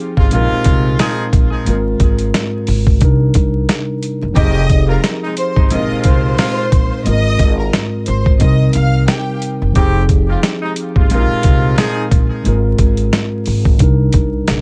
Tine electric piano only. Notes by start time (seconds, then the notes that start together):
Already playing: F3 C4 D#4 G4 G#4
0.30 A#2 G#3 C4
0.34 D4 A#4
0.41 D#4
1.64 G#2 G#3 A#3
1.69 F4 A#4
1.73 C4
2.99 C3 G3 D4
3.03 D#4 A#4
4.33 F3 C4 D#4
4.37 G4 G#4
5.69 A#2 G#3 C4
5.74 D4 A#4
5.80 D#4
7.03 G#2 G#3 A#3
7.08 F4 A#4
7.13 C4
8.38 C3 G3 C4
8.43 D#4 A#4
9.73 F3 C4 D#4
9.77 G4 G#4
11.09 A#2 G#3 C4
11.13 D4 A#4
11.20 D#4
12.43 G#2 G#3 A#3
12.47 F4 A#4
12.52 C4
13.77 C3 G3 D4
13.82 D#4 A#4